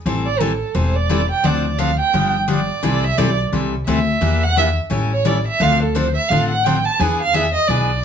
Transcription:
0.06 A1 E3 G3 C4 E4 A4
0.26 D5
0.40 E3 G3 C4 E4 A4
0.75 E1 E3 G3 C4 E4 A4 C5
0.96 D5
1.09 E3 G3 C4 E4 A4
1.31 G5
1.43 D2 D3 F3 C4 D4 A4 D5
1.78 D3 F3 C4 D4 A4 F5
1.99 G5
2.13 G1 D3 F3 B3 D4 G4
2.48 D3 F3 B3 D4 G4 D5
2.83 C2 C3 E3 G3 C4 E4 A4
3.04 E5
3.18 B1 C3 E3 G3 C4 E4 A4 D5
3.52 C2 C3 E3 G3 C4 E4 A4
3.87 D2 C3 E3 G3 C4 E4 A4 E5
4.21 E2 E3 A#3 D4 G4
4.43 F#5
4.56 E3 A#3 D4 G4 E5
4.90 A1 E3 G3 C#4 E4 A4
5.13 C#5
5.25 E3 G3 C#4 E4 A4 D5
5.48 E5
5.60 D2 D3 F3 C4 D4 A4 F5
5.83 A4
5.95 D3 F3 C4 D4 A4 C5
6.16 E5
6.29 A1 D3 F3 C4 D4 A4 F5
6.49 F#5
6.64 D3 F3 C4 D4 A4 G5
6.85 A5
7.00 E2 E3 B3 D4 G#4 G#5
7.21 F5
7.33 E3 B3 D4 G#4 E5
7.54 D#5
7.68 B1 E3 B3 D4 G#4 D5

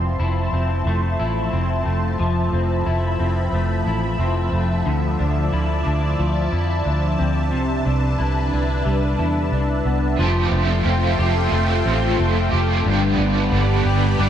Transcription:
Already playing: F1 F3 C4 E4 E5 A5 C6
0.20 F1 E4
0.53 F1 C4
0.86 F1 A3
1.19 A1 E4
1.53 F1 C4
1.86 F1 A3
2.19 F1 F3 B5
2.53 F1 C4
2.86 F1 E4
3.20 F1 C4
3.52 F1 A3
3.86 A1 E4
4.19 F1 C4
4.52 F1 A3
4.85 D2 D3 D5 A5
5.19 D2 D4
5.53 D2 E4
5.85 D2 D4
6.19 D2 F3
6.52 F2 E4
6.85 D2 D4
7.19 D2 C4
7.52 C2 C3 D4 B4
7.85 C2 D4
8.19 C2 E4
8.53 C2 D4
8.86 C2 G3
9.19 E2 E4
9.52 C2 D4
9.85 C2 B3
10.16 F1 F3 A3 F4 A4 G5 C6
10.23 C4 G4
10.51 F1 A3
10.85 F1 C4
11.19 F1 G4
11.51 F1 F3 A3 C4
11.56 G4
11.86 A1 C4
12.19 F1 A3
12.51 F1 C4 G4
12.57 A3
12.83 G1 G2 D3 G3 G4 B4 D5 B5
12.89 B3 D4 G4
13.18 G1 B3
13.52 G1 D4
13.85 G1 G4
14.17 G1 G3 B3
14.21 D4 G4

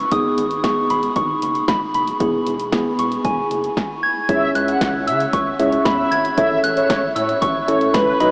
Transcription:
0.12 G#1 B3 D#4 G#4 D#6, kick, closed hi-hat
0.38 G#1, closed hi-hat
0.51 closed hi-hat
0.64 B3 D#4 G#4 C#6, kick, snare, closed hi-hat
0.90 G#1 B5, closed hi-hat
1.03 closed hi-hat
1.16 G#1 C#6, kick, closed hi-hat
1.42 F#1, closed hi-hat
1.55 closed hi-hat
1.68 G#1 B5, kick, snare, closed hi-hat
1.94 F#1 B5, closed hi-hat
2.08 closed hi-hat
2.20 E1 B3 E4 G#4, kick, closed hi-hat
2.47 E1, closed hi-hat
2.60 closed hi-hat
2.72 B3 E4 G#4, kick, snare, closed hi-hat
2.99 E1 C#6, closed hi-hat
3.12 closed hi-hat
3.25 E1 G#5, kick, closed hi-hat
3.51 F#1, closed hi-hat
3.64 closed hi-hat
3.77 kick, snare
4.03 G#6
4.29 C#2 C#4 E4 G#4 C#5 E5, kick, closed hi-hat
4.55 C#2 F#6, closed hi-hat
4.68 F#5, closed hi-hat
4.81 C#2, kick, snare, closed hi-hat
5.07 C#3 E5 E6, closed hi-hat
5.20 closed hi-hat
5.33 C#2 C#6, kick, closed hi-hat
5.59 C#2 C#4 E4 G#4 C#5 E5, closed hi-hat
5.72 closed hi-hat
5.85 E2 E5 B5, kick, snare, closed hi-hat
6.11 G#1 G#6, closed hi-hat
6.25 closed hi-hat
6.38 A1 C#4 E4 A4 C#5 E5, kick, closed hi-hat
6.64 A1 F#6, closed hi-hat
6.77 C#5, closed hi-hat
6.90 A1, kick, snare, closed hi-hat
7.16 A2 C#5 E6, closed hi-hat
7.29 closed hi-hat
7.42 A1 C#6, kick, closed hi-hat
7.68 A1 C#4 E4 A4 C#5, closed hi-hat
7.81 closed hi-hat
7.94 C#2 B4 B5, kick, snare, closed hi-hat
8.20 B1 D#4 F#4 B4 D#5 B5, closed hi-hat

